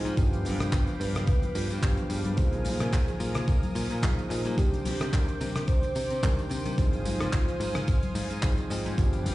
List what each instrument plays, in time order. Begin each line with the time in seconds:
Already playing: tine electric piano F3 C4 D#4 G#4, analog synth pad C5 F5 G#5 D#6
0.05 picked electric bass G#2, closed hi-hat, tambourine, muted conga, high conga
0.16 picked electric bass G1, tine electric piano F3 B3 D4 G4, analog synth pad B4 G5 D6, kick, closed hi-hat, tambourine
0.33 closed hi-hat, tambourine
0.45 picked electric bass G2, open hi-hat, tambourine, muted conga, high conga
0.59 picked electric bass G2, cross-stick, closed hi-hat, tambourine, muted conga, low conga
0.62 tambourine
0.72 picked electric bass G1, kick, clap, closed hi-hat, tambourine
0.87 closed hi-hat, tambourine
0.89 tambourine
1.00 picked electric bass G2, soft synth lead B4, open hi-hat, tambourine, high conga
1.15 cross-stick, closed hi-hat, tambourine, low conga
1.27 picked electric bass G1, kick, closed hi-hat, tambourine
1.42 closed hi-hat, tambourine, muted conga, high conga
1.55 picked electric bass G2, soft synth lead F4, open hi-hat, tambourine
1.70 picked electric bass G2, closed hi-hat, tambourine
1.82 picked electric bass G1, tine electric piano F3 B3 D4 G4, soft synth lead G4, kick, clap, closed hi-hat, tambourine, high conga
1.97 closed hi-hat, tambourine
2.10 picked electric bass G2, soft synth lead G#4, open hi-hat, tambourine
2.25 picked electric bass G2, closed hi-hat, tambourine, high conga
2.36 picked electric bass A#1, tine electric piano F3 A#3 D#4 C5, analog synth pad A#4 G#5 D#6, kick, closed hi-hat, tambourine
2.53 closed hi-hat, tambourine
2.64 picked electric bass A#2, open hi-hat, tambourine, high conga
2.80 picked electric bass A#2, cross-stick, closed hi-hat, tambourine, muted conga, low conga
2.93 picked electric bass A#1, kick, clap, closed hi-hat, tambourine
3.08 closed hi-hat, tambourine
3.20 picked electric bass A#2, open hi-hat, tambourine, high conga
3.35 cross-stick, closed hi-hat, tambourine, low conga
3.47 picked electric bass A#1, kick, closed hi-hat, tambourine
3.63 closed hi-hat, tambourine, high conga
3.75 picked electric bass A#2, open hi-hat, tambourine
3.90 picked electric bass A#2, closed hi-hat, tambourine
4.02 picked electric bass A#1, tine electric piano F3 A#3 D#4 G#4, kick, clap, closed hi-hat, tambourine, high conga
4.18 closed hi-hat, tambourine
4.29 picked electric bass A#2, tine electric piano F3 A#3 D#4 G#4, open hi-hat, tambourine
4.45 picked electric bass A#2, closed hi-hat, tambourine, muted conga, high conga
4.57 picked electric bass C2, tine electric piano D#3 C4 D4 G4, soft synth lead G4, analog synth pad C5 G5 D6, kick, closed hi-hat, tambourine
4.73 closed hi-hat, tambourine
4.85 picked electric bass C3, open hi-hat, tambourine, muted conga, high conga
5.00 picked electric bass C3, cross-stick, closed hi-hat, tambourine, muted conga, low conga
5.12 picked electric bass C2, soft synth lead A#4, kick, clap, closed hi-hat, tambourine
5.28 closed hi-hat, tambourine
5.41 picked electric bass C3, open hi-hat, tambourine, high conga
5.56 cross-stick, closed hi-hat, tambourine, low conga
5.68 picked electric bass C2, soft synth lead C5, kick, closed hi-hat, tambourine
5.83 closed hi-hat, tambourine, muted conga, high conga
5.95 picked electric bass C3, open hi-hat, tambourine
6.10 picked electric bass C3, closed hi-hat, tambourine
6.12 tambourine
6.23 picked electric bass C2, tine electric piano D#3 C4 D4 G4, soft synth lead A#4, kick, clap, closed hi-hat, tambourine, high conga
6.38 closed hi-hat, tambourine
6.49 picked electric bass C3, open hi-hat, tambourine
6.65 picked electric bass C3, closed hi-hat, tambourine, high conga
6.77 picked electric bass G#1, tine electric piano F3 C4 D#4 C5, soft synth lead G#4, analog synth pad F5 G#5 D#6, kick, closed hi-hat, tambourine
6.93 closed hi-hat, tambourine
7.05 picked electric bass G#2, soft synth lead F4, open hi-hat, tambourine, high conga
7.20 picked electric bass G#2, cross-stick, closed hi-hat, tambourine, muted conga, low conga
7.33 picked electric bass G#1, kick, clap, closed hi-hat, tambourine
7.48 closed hi-hat, tambourine
7.60 picked electric bass G#2, open hi-hat, tambourine, high conga
7.75 cross-stick, closed hi-hat, tambourine, low conga
7.87 picked electric bass G#1, kick, closed hi-hat, tambourine
8.03 closed hi-hat, tambourine, high conga
8.04 tambourine
8.15 picked electric bass G#2, open hi-hat, tambourine
8.30 picked electric bass G#2, closed hi-hat, tambourine
8.42 picked electric bass G#1, tine electric piano F3 C4 D#4 G#4, kick, clap, closed hi-hat, tambourine, high conga
8.57 closed hi-hat, tambourine
8.70 picked electric bass G#2, tine electric piano F3 C4 D#4 G#4, open hi-hat, tambourine
8.85 picked electric bass G#2, closed hi-hat, tambourine, muted conga, high conga
8.98 picked electric bass G1, tine electric piano F3 B3 D4 G4, analog synth pad B4 F5 G5 D6, kick, closed hi-hat, tambourine
9.13 closed hi-hat, tambourine
9.25 picked electric bass G2, open hi-hat, tambourine, muted conga, high conga